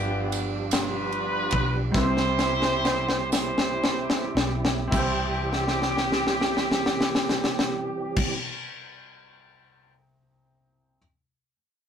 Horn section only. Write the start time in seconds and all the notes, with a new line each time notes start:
Already playing: B3 D4 G4
0.72 D4 F4 B4
1.96 E4 G4 C5
3.31 E4 G4 C5
4.92 G4